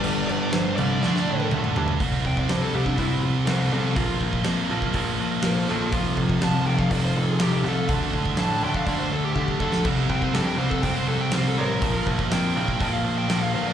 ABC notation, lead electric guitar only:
X:1
M:4/4
L:1/16
Q:1/4=122
K:Cmix
V:1 name="Lead electric guitar"
d2 d2 c2 d6 z4 | z2 g d c A G D E2 z2 [Ac]2 [CA]2 | F2 z8 z2 [Ac]2 [FA]2 | F2 z2 a2 g f d c A ^G =G2 A2 |
z4 a2 g f d c A G G2 A2 | z2 g c A g c A g c A g c A B2- | B2 z2 g4 g f2 g2 f2 d |]